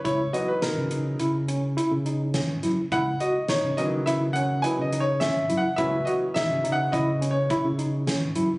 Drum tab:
HH |xxxxxxxxxx|xxxxxxxxxx|xxxxxxxxxx|
SD |--o-----oo|--o-o---o-|--o-----o-|
BD |o---------|o---------|o---o-o---|